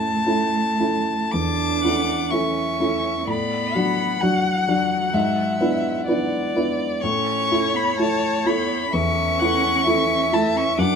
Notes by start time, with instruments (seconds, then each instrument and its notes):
Already playing: grand piano A2 A3 C#4 E4, cello A3, violin A5
0.26 grand piano A3 C#4 E4
0.80 grand piano A3 C#4 E4
1.32 grand piano E2, cello D4, violin A5 D6
1.84 grand piano A3 C#4 E4, violin F#5
2.30 grand piano A3 C#4 E4, cello C#4, violin E5 C#6
2.80 grand piano A3 C#4 E4
3.27 grand piano A2, cello B3, violin D5 B5
3.75 grand piano F#3 D4 F#4, violin F#5
4.21 cello F#3, grand piano F#3 D4 F#4, violin F#5
4.68 grand piano F#3 D4 F#4
5.13 grand piano G#2, violin E5
5.61 grand piano B3 D4 E4
6.07 grand piano B3 D4 E4, violin D5
6.56 grand piano B3 D4 E4
7.01 grand piano A2, cello C#4, violin C#5 C#6
7.51 grand piano A3 E4
7.74 cello B3, violin B5
7.98 cello A3, grand piano A3 E4, violin A5
8.45 grand piano A3 E4, cello B3, violin B5
8.92 grand piano E2, cello C#4, violin E5 C#6
9.39 grand piano A3 E4, violin F#5
9.86 grand piano A3 E4, violin E5
10.32 grand piano A3 E4, cello A3, violin A5
10.56 cello C#4, violin C#6
10.78 grand piano F#2, cello D4, violin F#5 D6